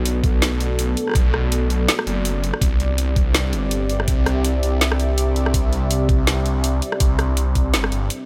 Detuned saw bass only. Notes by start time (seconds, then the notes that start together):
Already playing: B1
0.24 B1
1.15 B1
2.07 F#1
2.62 C2
3.53 G1
4.08 C2
4.63 C2
5.36 C2
6.09 C2
7.00 C2
7.74 G1
7.92 G1